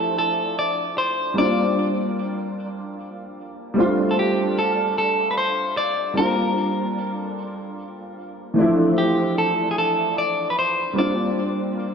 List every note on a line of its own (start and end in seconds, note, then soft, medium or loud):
0.00 1.30 F3 medium
0.00 1.31 A3 medium
0.00 1.32 C4 medium
0.00 1.33 D4 medium
0.00 1.33 E4 medium
0.00 0.17 A4 medium
0.18 0.58 A4 medium
0.59 0.98 D5 loud
0.98 1.38 C5 medium
1.34 3.70 G3 medium
1.34 3.71 A#3 medium
1.34 3.72 C4 medium
1.38 3.73 D4 medium
1.38 3.74 F4 medium
1.38 2.93 D5 loud
3.74 6.10 G3 medium
3.74 6.11 A3 medium
3.74 6.12 C4 medium
3.79 6.13 D4 medium
3.79 6.14 F4 medium
4.11 4.16 A4 medium
4.19 4.58 G4 medium
4.59 4.97 A4 medium
4.98 5.30 A4 loud
5.31 5.36 B4 medium
5.38 5.77 C5 loud
5.77 6.17 D5 loud
6.13 8.50 G3 medium
6.13 8.51 A#3 medium
6.13 8.52 C4 medium
6.13 7.17 A#4 medium
6.18 8.53 D4 medium
6.18 8.54 F4 medium
7.17 7.72 A4 medium
8.54 8.61 E3 medium
8.54 10.91 A3 medium
8.54 10.92 C4 medium
8.58 10.94 F3 medium
8.58 10.93 D4 medium
8.58 10.94 E4 medium
8.98 9.38 G4 medium
9.38 9.71 A4 medium
9.71 9.77 G#4 medium
9.78 10.18 A4 medium
10.18 10.50 D5 loud
10.50 10.56 B4 medium
10.59 10.98 C5 loud
10.93 11.94 G3 medium
10.93 11.94 A#3 medium
10.93 11.94 C4 medium
10.98 11.94 D4 medium
10.98 11.94 F4 medium
10.98 11.94 D5 medium